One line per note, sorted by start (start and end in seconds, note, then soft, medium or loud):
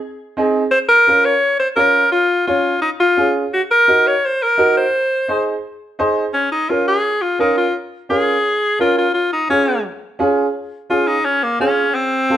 0.37 0.61 C4 medium
0.37 0.62 D#4 medium
0.37 0.62 G#4 medium
0.71 0.79 C5 loud
0.88 1.26 A#4 loud
1.07 1.32 C#4 medium
1.07 1.32 F4 medium
1.07 1.32 A#4 medium
1.25 1.59 C#5 medium
1.59 1.67 C5 medium
1.76 2.01 C#4 medium
1.76 2.02 F4 medium
1.76 2.09 A#4 loud
1.76 2.02 C#5 medium
2.12 2.45 F4 loud
2.47 2.72 C#4 medium
2.47 2.80 F4 medium
2.47 2.72 F4 medium
2.47 2.72 C#5 medium
2.82 2.90 D#4 medium
3.00 3.33 F4 loud
3.17 3.42 C#4 medium
3.17 3.42 F4 medium
3.17 3.43 G#4 medium
3.53 3.61 F#4 medium
3.71 4.08 A#4 loud
3.88 4.13 D#4 medium
3.88 4.13 F#4 medium
3.88 4.13 A#4 medium
4.07 4.26 C#5 medium
4.25 4.44 C5 medium
4.42 4.76 A#4 loud
4.58 4.83 D#4 medium
4.58 4.83 F#4 medium
4.58 4.83 A#4 medium
4.77 5.43 C5 medium
5.28 5.53 D#4 medium
5.28 5.54 G#4 medium
5.28 5.54 C5 medium
5.99 6.24 D#4 medium
5.99 6.24 G#4 medium
5.99 6.24 C5 loud
6.33 6.51 C#4 medium
6.52 6.71 D#4 medium
6.69 6.94 C#4 medium
6.69 6.87 F4 medium
6.69 6.94 F4 medium
6.69 6.94 A#4 medium
6.88 7.23 G#4 medium
7.22 7.39 F4 medium
7.39 7.64 C#4 medium
7.39 7.57 D#4 medium
7.39 7.64 F4 medium
7.39 7.64 A#4 medium
7.57 7.74 F4 medium
8.09 8.34 C#4 medium
8.09 8.34 F4 medium
8.09 8.78 G#4 medium
8.09 8.35 A#4 medium
8.79 9.04 C#4 medium
8.79 9.04 F4 medium
8.79 8.97 F4 medium
8.79 9.05 A#4 medium
8.98 9.13 F4 medium
9.14 9.32 F4 medium
9.33 9.49 D#4 medium
9.49 9.74 C#4 medium
9.49 9.84 C#4 medium
9.49 9.74 F4 medium
9.49 9.75 G#4 medium
10.19 10.44 C#4 medium
10.19 10.44 F4 medium
10.19 10.45 G#4 loud
10.90 11.14 C#4 medium
10.90 11.09 F4 medium
10.90 11.15 F4 medium
10.90 11.15 G#4 medium
11.07 11.26 D#4 medium
11.25 11.45 C#4 medium
11.43 11.60 A#3 medium
11.59 11.84 C#4 medium
11.59 11.96 C#4 medium
11.59 11.85 F4 medium
11.59 11.85 G#4 medium
11.95 12.37 C4 loud
12.30 12.37 C4 medium
12.30 12.37 F4 medium
12.30 12.37 A4 medium